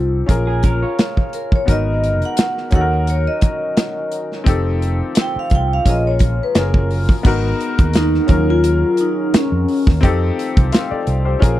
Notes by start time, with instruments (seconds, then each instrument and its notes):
Already playing: fingered electric bass C2, grand piano C4 D#4 G4 A4, vibraphone F4
0.26 fingered electric bass A#1, grand piano C#4 F4 G#4 A#4, kick, closed hi-hat
0.47 clean electric guitar G#4
0.63 clean electric guitar C#4 A#4, kick, closed hi-hat
0.82 clean electric guitar F4 C#5
0.99 snare, closed hi-hat
1.17 kick
1.33 vibraphone A#4, closed hi-hat
1.52 vibraphone C#5, kick
1.66 fingered electric bass G#1, french horn section D#3 G#3 B3 F#4 A#4, grand piano B3 D#4 F#4 A#4, kick, closed hi-hat
1.71 vibraphone D#5
2.04 closed hi-hat
2.22 vibraphone F#5, closed hi-hat
2.37 snare, closed hi-hat
2.57 snare
2.70 fingered electric bass D#2, french horn section D#3 F#3 C#4, grand piano C#4 D#4 F#4, kick, closed hi-hat
2.74 grand piano A4, vibraphone F#5
2.81 grand piano A#4
3.07 vibraphone C#5, closed hi-hat
3.27 vibraphone D#5
3.41 kick, closed hi-hat
3.77 snare, closed hi-hat
4.12 closed hi-hat
4.32 snare
4.44 fingered electric bass F1, french horn section F3 A3 C4 F4, grand piano C4 D#4 G4, kick, closed hi-hat
4.48 grand piano A4
4.82 closed hi-hat
5.15 snare, closed hi-hat
5.21 vibraphone G5
5.36 vibraphone F5, muted fingered electric bass stroke
5.50 fingered electric bass C2, vibraphone F4, kick, closed hi-hat
5.55 vibraphone G5
5.73 vibraphone F5
5.85 fingered electric bass A#1, french horn section C#3 G#3 A#3, grand piano C#4 F4 G#4 A#4, kick, closed hi-hat
5.89 vibraphone D#5
6.07 vibraphone C#5
6.19 kick, closed hi-hat
6.43 vibraphone B4
6.55 fingered electric bass F#1, french horn section F#3, grand piano C#4 F4 G#4, vibraphone A#4, snare, closed hi-hat
6.59 grand piano A#4
6.74 kick
6.91 open hi-hat
7.09 kick
7.23 fingered electric bass G#1, french horn section D#3 G#3 B3 G#4 A#4, grand piano B3 D#4 F#4, kick, crash
7.27 grand piano A#4
7.61 vibraphone D#4, closed hi-hat
7.79 fingered electric bass D#2, kick, closed hi-hat
7.93 vibraphone D#4, snare, closed hi-hat
8.14 snare
8.27 fingered electric bass D#2, french horn section F#3 C#4, grand piano F#3 C#4 F4 A#4, kick, closed hi-hat
8.50 vibraphone F4
8.64 closed hi-hat
8.97 vibraphone D#4, closed hi-hat
9.34 vibraphone C#4, muted fingered electric bass stroke, snare, closed hi-hat
9.52 fingered electric bass F2
9.68 open hi-hat
9.87 fingered electric bass D#2, kick, snare
10.01 fingered electric bass F2, french horn section F3 A3 C4 F4, grand piano C4 D#4 G4, kick, closed hi-hat
10.05 grand piano A4
10.39 closed hi-hat
10.57 fingered electric bass C2, kick, closed hi-hat
10.72 grand piano C5 F5, snare, closed hi-hat
10.91 grand piano A4 D5, muted fingered electric bass stroke
11.07 fingered electric bass C2, closed hi-hat
11.25 grand piano G4 C5
11.39 fingered electric bass A#1, grand piano C#4 F4 G#4 A#4, kick
11.43 french horn section C#3 G#3 F4 A#4, closed hi-hat